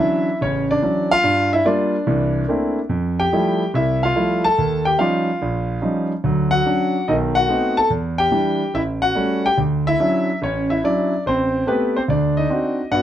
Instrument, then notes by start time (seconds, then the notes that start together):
grand piano
Already playing: E4 E5
0.00 E3 F#3 C#4 D4
0.41 A1 C#3 C#4 C#5
0.71 D4 D5
0.82 E3 F#3 C#4 D4
1.11 F4 F5
1.24 G2
1.53 E4 E5
1.65 G3 A#3 D4 F4 D5
2.07 C2 E3
2.48 A3 A#3 C4 D4 E4
2.89 F2
3.20 G4 G5
3.33 F3 G3 A3 E4
3.74 C2 E4 E5
4.03 F4 F5
4.15 F3 G3 A3 E4
4.44 A4 A5
4.58 D#2
4.85 G4 G5
4.99 F3 G3 C#4 D#4 F4 F5
5.42 A#1
5.82 F3 G3 C#4 D#4
6.24 D2 F#3
6.51 F#4 F#5
6.66 F#3 C#4 D4
7.08 B1 D#3 D#4 D#5
7.35 F#4 F#5
7.48 A3 B3 C4 D#4
7.77 A4 A5
7.90 E2
8.18 G4 G5
8.32 E3 G3 D4
8.74 A1 E4 E5
9.02 F#4 F#5
9.15 G3 A3 C#4
9.46 G4 G5
9.58 D2
9.87 E4 E5
10.00 F#3 C#4 D4 E4
10.42 A1 C#4 C#5
10.70 E4 E5
10.84 F#3 C#4 D4 E4 D5
11.26 A1 C4 C5
11.67 A3 B3 C4 G4 B4
11.96 C4 C5
12.08 D2 D4 D5
12.37 D#4 D#5
12.50 C4 D4 D#4 F#4
12.91 G2 B3 F#4 F#5